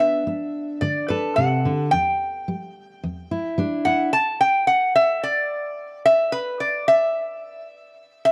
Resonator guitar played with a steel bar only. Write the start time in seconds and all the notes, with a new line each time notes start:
0.00 E5
0.81 D5
1.08 B4
1.36 F#5
1.91 G5
3.85 F#5
4.13 A5
4.41 G5
4.67 F#5
4.96 E5
5.23 D5
6.05 E5
6.32 B4
6.60 D5
6.88 E5
8.25 E5